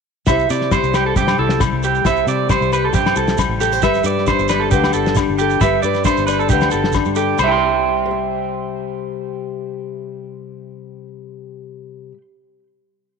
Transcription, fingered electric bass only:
0.27 C2
0.50 C3
0.83 C2
1.16 G2
1.39 C2
1.73 C2
2.05 C2
2.27 C3
2.61 C2
2.94 G2
3.16 C2
3.49 A1
3.82 G1
4.04 G2
4.39 G1
4.72 D2
4.94 G1
5.29 G1
5.61 G1
5.83 G2
6.18 G1
6.50 D2
6.73 G1
7.06 G2
7.39 C2

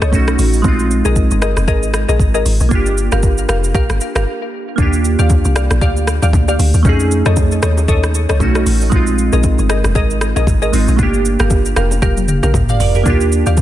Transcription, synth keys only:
Already playing: A3 C#4 D#4 G#4
0.12 A3 C#4 D#4 F#4
0.62 G#3 C4
0.66 D#4 F4
2.69 A#3 D4
2.73 F4 G4
4.76 A#3 D4
4.80 F4 G4
6.83 A3 C#4
6.87 D#4 G#4
8.39 A3 C#4 D#4 F#4
8.89 G#3 C4
8.94 D#4 F4
10.72 G#3 C4 D#4 F4
10.96 A3 D4
11.01 A#3 F4 G4
12.70 D5 F5
12.81 A#4 D5
12.96 G4 A#4
13.03 A#3 D4
13.08 F4 G4

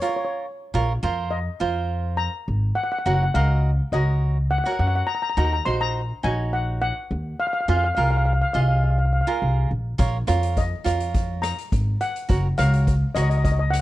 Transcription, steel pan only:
0.02 C#5
0.09 C#5
0.16 C#5
0.25 C#5
1.31 D#5
2.17 A#5
2.75 F#5
2.84 F#5
2.92 F#5
2.98 F#5
3.06 F#5
3.14 F#5
3.23 F#5
3.34 F5
3.93 D#5
4.51 F#5
4.58 F#5
4.64 F#5
4.72 F#5
4.80 F#5
4.88 F#5
4.96 F#5
5.07 A#5
5.15 A#5
5.22 A#5
5.30 A#5
5.38 A#5
5.45 A#5
5.53 A#5
5.65 C6
5.81 A#5
6.24 G#5
6.53 F#5
6.82 F#5
7.40 F5
7.47 F5
7.53 F5
7.61 F5
7.69 F5
7.77 F5
7.84 F5
7.95 F5
8.04 F5
8.11 F5
8.17 F5
8.26 F5
8.33 F5
8.41 F5
8.53 F5
8.61 F5
8.68 F5
8.77 F5
8.84 F5
8.91 F5
8.98 F5
9.05 F5
9.13 F5
9.21 F5
10.58 D#5
11.42 A#5
12.01 F#5
12.58 F5
13.15 D#5
13.22 D#5
13.30 D#5
13.37 D#5
13.44 D#5
13.52 D#5
13.59 D#5
13.71 F#5

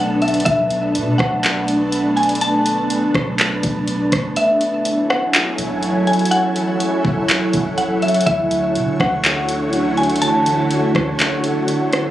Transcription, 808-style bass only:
Already playing: B1
0.46 B1
0.95 B2
1.19 B1
3.14 B1
3.64 B1
4.12 F#1
5.58 F#1
7.05 F#1
7.54 F#1
8.27 D2
8.75 D3
9.00 D2
10.95 D2

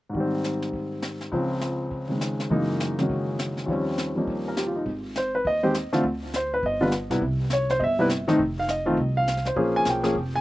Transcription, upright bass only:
4.86 G#1
5.45 D#2
5.93 muted upright bass stroke
6.03 D2
6.63 G1
7.10 B1
7.22 C2
7.80 G1
8.39 F1
8.97 C2
9.56 A#1
9.86 B1
10.15 F1

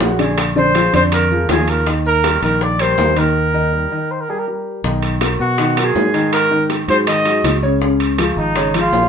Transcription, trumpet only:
0.01 F#4
0.20 G#4
0.58 C5
0.95 C5
1.14 A#4
1.50 G#4
1.69 A#4
2.07 A#4
2.44 A#4
2.62 D5
2.81 C5
3.19 A#4
4.11 C5
4.21 A#4
4.30 G#4
4.39 A#4
5.41 F#4
5.84 G#4
6.33 A#4
6.89 C5
7.08 D#5
8.38 D#4
8.81 F4

